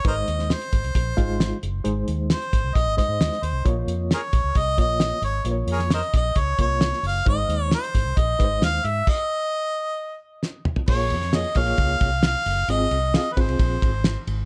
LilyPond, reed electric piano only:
\new Staff \with { instrumentName = "Reed electric piano" } { \time 4/4 \key bes \minor \tempo 4 = 133 <aes ees' ces'' c''>4 r4. <aes ees' f'>4 r8 | <aes ees' c''>4 r4. <aes ees' c''>4 r8 | <bes f' des''>4 r4. <bes f' des''>4 r8 | <bes f' c'' des''>4 r4. <bes f' des''>4 r8 |
<aes ees' c''>4 r4. <aes ees' ces'' c''>4 r8 | r1 | <bes f' aes' des''>8 r8 <bes f' aes' des''>8 <bes f' aes' des''>4 r4. | <c' f' aes' ees''>8 r8 <c' f' aes' f''>8 <c' f' aes' c''>4 r4. | }